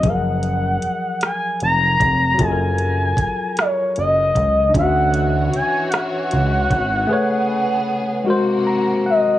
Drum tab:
HH |xxxxxx|xxxxxx|xxxxxx|------|
SD |---r--|---r--|---r--|------|
BD |o----o|o-o--o|o----o|------|